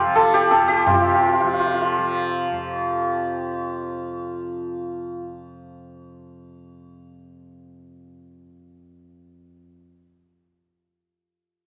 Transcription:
0.00 0.62 F2 medium
0.00 0.87 C3 medium
0.00 0.06 F3 medium
0.00 0.86 F4 medium
0.00 0.33 G4 loud
0.00 0.15 A4 loud
0.06 1.43 F3 medium
0.16 0.50 A4 loud
0.16 tabla na medium
0.34 0.68 G4 loud
0.34 tabla te medium
0.51 3.45 A4 loud
0.51 tabla te loud
0.62 2.51 F2 medium
0.68 3.81 G4 loud
0.68 tabla te medium
0.87 8.02 C3 medium
0.87 0.94 F4 medium
0.87 tabla na loud
0.87 tabla ge loud
0.94 1.00 F4 medium
1.01 1.07 F4 medium
1.07 1.13 F4 medium
1.14 1.20 F4 medium
1.21 1.27 F4 medium
1.27 1.32 F4 medium
1.33 1.40 F4 medium
1.40 1.98 F3 medium
1.40 1.46 F4 medium
1.47 1.53 F4 medium
1.54 1.59 F4 medium
1.60 1.66 F4 medium
1.67 1.73 F4 medium
1.74 1.81 F4 medium
1.81 5.18 F4 medium
1.98 8.99 F3 medium
2.52 9.67 F2 medium

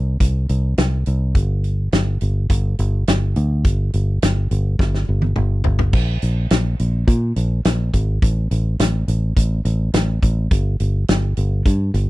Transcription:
0.00 0.18 C2 medium
0.20 0.47 C2 medium
0.20 kick medium
0.20 closed hi-hat medium
0.49 0.76 C2 medium
0.49 closed hi-hat medium
0.77 1.05 C2 medium
0.77 snare loud
0.77 closed hi-hat medium
1.06 1.34 C2 medium
1.06 closed hi-hat medium
1.35 1.89 G1 medium
1.35 kick medium
1.35 closed hi-hat medium
1.64 closed hi-hat soft
1.92 2.19 G1 medium
1.92 snare loud
1.92 closed hi-hat medium
2.21 2.48 G1 medium
2.21 closed hi-hat medium
2.49 2.77 G1 medium
2.49 kick medium
2.49 closed hi-hat medium
2.79 3.06 G1 medium
2.79 closed hi-hat medium
3.07 3.34 G1 medium
3.07 snare medium
3.07 closed hi-hat medium
3.36 3.63 D2 medium
3.36 closed hi-hat soft
3.64 3.91 G1 medium
3.64 kick medium
3.64 closed hi-hat medium
3.93 4.20 G1 medium
3.93 closed hi-hat medium
4.22 4.49 G1 medium
4.22 snare loud
4.22 closed hi-hat medium
4.51 4.77 G1 medium
4.51 closed hi-hat medium
4.79 5.06 G1 medium
4.79 kick medium
4.79 snare medium
4.95 snare soft
5.09 5.35 G1 medium
5.22 high tom medium
5.36 5.63 G1 medium
5.36 mid tom medium
5.64 5.92 G1 medium
5.64 floor tom medium
5.79 floor tom medium
5.93 6.17 A#1 medium
5.93 kick medium
5.93 crash medium
6.22 6.46 A#1 medium
6.22 closed hi-hat medium
6.50 6.75 A#1 medium
6.50 snare loud
6.50 closed hi-hat medium
6.79 7.03 A#1 medium
6.79 closed hi-hat medium
7.07 7.31 A#2 medium
7.07 kick medium
7.07 closed hi-hat medium
7.36 7.60 A#1 medium
7.36 closed hi-hat medium
7.65 7.89 A#1 medium
7.65 snare loud
7.65 closed hi-hat medium
7.94 8.18 G#1 medium
7.94 kick medium
7.94 closed hi-hat medium
8.22 8.46 A1 medium
8.22 kick loud
8.22 closed hi-hat medium
8.51 8.75 A1 medium
8.51 closed hi-hat medium
8.79 9.03 A1 medium
8.79 snare medium
8.79 closed hi-hat loud
9.08 9.32 A1 medium
9.08 closed hi-hat medium
9.37 9.60 A1 medium
9.37 kick medium
9.37 closed hi-hat loud
9.65 9.89 A1 medium
9.65 closed hi-hat medium
9.93 10.18 A1 medium
9.93 snare loud
9.93 closed hi-hat medium
10.22 10.46 A1 medium
10.22 kick medium
10.22 closed hi-hat medium
10.51 10.75 G1 medium
10.51 kick medium
10.51 closed hi-hat medium
10.80 11.04 G1 medium
10.80 closed hi-hat medium
11.08 11.33 G1 medium
11.08 snare loud
11.08 closed hi-hat medium
11.37 11.61 G1 medium
11.37 closed hi-hat medium
11.66 11.90 G2 medium
11.66 kick medium
11.66 closed hi-hat medium
11.94 12.10 G1 medium
11.94 closed hi-hat medium

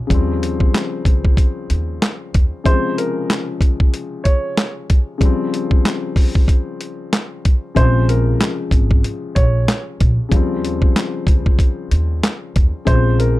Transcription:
0.07 0.67 D#2 loud
0.07 2.60 C#3 medium
0.07 2.61 F3 medium
0.07 kick loud
0.11 2.62 G3 medium
0.11 2.64 C4 medium
0.11 closed hi-hat medium
0.43 closed hi-hat medium
0.60 kick medium
0.74 snare loud
0.74 clap loud
0.74 closed hi-hat medium
1.05 1.34 C#2 loud
1.05 kick medium
1.05 closed hi-hat medium
1.25 kick medium
1.37 kick medium
1.37 closed hi-hat medium
1.70 1.98 D#2 medium
1.70 closed hi-hat medium
2.02 snare loud
2.02 clap medium
2.02 closed hi-hat medium
2.34 2.50 D#2 medium
2.34 kick loud
2.34 closed hi-hat medium
2.64 5.16 C#3 medium
2.64 5.17 F3 medium
2.64 2.94 C5 loud
2.64 kick loud
2.64 closed hi-hat medium
2.69 5.20 C3 medium
2.69 5.19 G#3 medium
2.98 3.44 A#4 medium
2.98 closed hi-hat medium
3.30 snare loud
3.30 clap loud
3.30 closed hi-hat medium
3.61 kick medium
3.61 closed hi-hat medium
3.80 kick medium
3.94 closed hi-hat medium
4.24 4.71 C#5 medium
4.24 kick medium
4.24 closed hi-hat medium
4.57 snare loud
4.57 clap medium
4.57 closed hi-hat medium
4.90 kick loud
4.90 closed hi-hat medium
5.18 7.71 C#3 medium
5.18 7.72 F3 medium
5.18 kick loud
5.18 closed hi-hat medium
5.23 7.73 G3 medium
5.23 7.74 C4 medium
5.54 closed hi-hat medium
5.71 kick medium
5.85 snare loud
5.85 clap loud
5.85 closed hi-hat medium
6.16 kick loud
6.16 open hi-hat medium
6.35 kick loud
6.48 kick medium
6.48 closed hi-hat medium
6.81 closed hi-hat medium
7.13 snare loud
7.13 clap medium
7.13 closed hi-hat medium
7.45 kick loud
7.45 closed hi-hat medium
7.75 8.33 A#1 loud
7.75 10.27 C#3 medium
7.75 10.28 F3 medium
7.75 8.05 C5 loud
7.75 kick loud
7.75 closed hi-hat medium
7.80 10.30 C3 medium
7.80 10.29 G#3 medium
8.09 8.55 A#4 medium
8.09 closed hi-hat medium
8.41 snare loud
8.41 clap loud
8.41 closed hi-hat medium
8.71 9.00 G#1 loud
8.71 kick medium
8.71 closed hi-hat medium
8.91 kick medium
9.04 closed hi-hat medium
9.35 9.65 A#1 medium
9.35 9.82 C#5 medium
9.35 kick medium
9.35 closed hi-hat medium
9.68 snare loud
9.68 clap medium
9.68 closed hi-hat medium
10.00 10.16 A#1 medium
10.00 kick loud
10.00 closed hi-hat medium
10.29 10.89 D#2 loud
10.29 12.81 C#3 medium
10.29 12.83 F3 medium
10.29 kick loud
10.29 closed hi-hat medium
10.34 12.84 G3 medium
10.34 12.85 C4 medium
10.65 closed hi-hat medium
10.82 kick medium
10.96 snare loud
10.96 clap loud
10.96 closed hi-hat medium
11.27 11.55 C#2 loud
11.27 kick medium
11.27 closed hi-hat medium
11.46 kick medium
11.59 kick medium
11.59 closed hi-hat medium
11.91 12.20 D#2 medium
11.91 closed hi-hat medium
12.23 snare loud
12.23 clap medium
12.23 closed hi-hat medium
12.56 12.71 D#2 medium
12.56 kick loud
12.56 closed hi-hat medium
12.85 13.39 A#1 loud
12.85 13.39 C#3 medium
12.85 13.39 F3 medium
12.85 13.16 C5 medium
12.85 kick loud
12.85 closed hi-hat medium
12.90 13.39 C3 medium
12.90 13.39 G#3 medium
13.19 13.39 A#4 medium
13.19 closed hi-hat medium

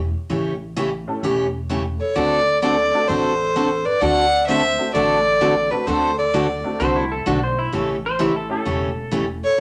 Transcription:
0.00 0.12 E1 medium
0.30 1.05 A1 medium
0.30 0.53 C#3 medium
0.30 0.52 E3 soft
0.30 0.53 A3 medium
0.30 0.53 C#4 medium
0.30 0.53 G4 medium
0.76 0.89 C#3 medium
0.76 0.89 E3 medium
0.76 0.89 A3 medium
0.76 0.89 C#4 medium
0.76 0.89 G4 medium
1.08 1.22 A3 medium
1.08 1.22 C#4 medium
1.08 1.22 E4 soft
1.08 1.22 G4 soft
1.08 1.22 A4 medium
1.23 1.97 E1 medium
1.23 1.46 C#3 medium
1.23 1.46 E3 medium
1.23 1.46 A3 medium
1.23 1.46 C#4 medium
1.23 1.46 G4 medium
1.69 1.81 C#3 medium
1.69 1.81 E3 medium
1.69 1.82 A3 medium
1.69 1.82 C#4 medium
1.69 1.82 G4 medium
2.00 2.16 A4 medium
2.00 2.17 C#5 medium
2.15 2.90 D2 medium
2.15 2.38 D3 medium
2.15 2.38 A3 medium
2.15 2.38 C4 medium
2.15 2.39 F#4 medium
2.15 2.61 A4 medium
2.15 2.39 A4 medium
2.15 2.61 D5 loud
2.62 2.74 D3 medium
2.62 2.74 A3 medium
2.62 2.74 C4 medium
2.62 2.75 F#4 medium
2.62 3.08 A4 medium
2.62 2.75 A4 medium
2.62 3.09 D5 loud
2.93 3.07 A3 medium
2.93 3.07 C4 medium
2.93 3.08 D4 medium
2.93 3.08 F#4 medium
2.93 3.08 A4 medium
3.08 3.83 A1 medium
3.08 3.31 D3 soft
3.08 3.32 A3 medium
3.08 3.32 C4 medium
3.08 3.32 F#4 medium
3.08 3.87 A4 medium
3.08 3.32 A4 medium
3.08 3.87 C5 medium
3.56 3.67 D3 medium
3.56 3.68 A3 medium
3.56 3.68 C4 medium
3.56 3.68 F#4 medium
3.56 3.68 A4 medium
3.85 4.02 B4 medium
3.85 4.03 D5 medium
4.01 4.76 D2 medium
4.01 4.24 D3 medium
4.01 4.24 A3 medium
4.01 4.24 C4 medium
4.01 4.25 F#4 medium
4.01 4.25 A4 medium
4.01 4.47 D5 medium
4.01 4.46 F#5 loud
4.47 4.60 D3 medium
4.47 4.60 A3 medium
4.47 4.60 C4 medium
4.47 4.61 F#4 medium
4.47 4.61 A4 medium
4.47 4.91 C5 medium
4.47 4.90 E5 loud
4.78 4.93 A3 medium
4.78 4.93 C4 medium
4.78 4.93 D4 medium
4.78 4.93 F#4 medium
4.78 4.93 A4 medium
4.94 5.69 A1 medium
4.94 5.17 D3 medium
4.94 5.17 A3 medium
4.94 5.17 C4 medium
4.94 5.17 F#4 medium
4.94 5.72 A4 medium
4.94 5.17 A4 medium
4.94 5.73 D5 loud
5.41 5.53 D3 medium
5.41 5.53 A3 medium
5.41 5.53 C4 medium
5.41 5.53 F#4 medium
5.41 5.53 A4 medium
5.70 5.85 A3 medium
5.70 5.85 C4 medium
5.70 5.86 D4 medium
5.70 5.89 F#4 medium
5.70 5.86 F#4 medium
5.70 5.86 A4 medium
5.70 5.88 B4 medium
5.86 6.62 D2 medium
5.86 6.10 D3 medium
5.86 6.10 A3 medium
5.86 6.10 C4 medium
5.86 6.10 F#4 medium
5.86 6.17 A4 medium
5.86 6.10 A4 medium
5.86 6.18 C5 medium
6.18 6.76 A4 medium
6.18 6.76 D5 medium
6.34 6.46 D3 medium
6.34 6.46 A3 medium
6.34 6.46 C4 medium
6.34 6.46 F#4 medium
6.34 6.46 A4 medium
6.64 6.78 A3 medium
6.64 6.78 C4 medium
6.64 6.79 D4 medium
6.64 6.79 F#4 medium
6.64 6.79 A4 medium
6.80 7.20 C2 medium
6.80 7.03 D3 medium
6.80 7.03 A3 medium
6.80 7.03 C4 medium
6.80 7.03 F#4 medium
6.80 7.03 A4 medium
6.80 6.95 C5 medium
6.96 7.11 E4 medium
7.12 7.26 A4 medium
7.26 7.66 B1 medium
7.26 7.38 D3 medium
7.26 7.38 A3 medium
7.26 7.38 C4 medium
7.26 7.42 D4 medium
7.26 7.39 F#4 medium
7.26 7.39 A4 medium
7.44 7.58 C5 medium
7.59 7.73 E4 medium
7.72 8.47 A1 medium
7.72 7.95 C#3 medium
7.72 7.95 E3 medium
7.72 7.96 A3 medium
7.72 7.96 C#4 medium
7.72 7.96 G4 medium
7.72 7.89 A4 medium
8.06 8.20 C5 loud
8.19 8.31 C#3 medium
8.19 8.31 E3 medium
8.19 8.31 A3 medium
8.19 8.31 C#4 medium
8.19 8.35 E4 medium
8.19 8.32 G4 medium
8.36 8.50 A4 medium
8.50 8.64 A3 medium
8.50 8.64 C#4 medium
8.50 8.64 E4 medium
8.50 8.64 G4 medium
8.50 8.64 A4 medium
8.50 9.26 A4 medium
8.65 9.40 E1 medium
8.65 8.88 C#3 medium
8.65 8.88 E3 medium
8.65 8.88 A3 medium
8.65 8.89 C#4 medium
8.65 8.89 G4 medium
9.11 9.24 C#3 medium
9.11 9.24 E3 medium
9.11 9.24 A3 medium
9.11 9.24 C#4 medium
9.11 9.24 G4 medium
9.44 9.60 A4 medium
9.44 9.60 C#5 loud

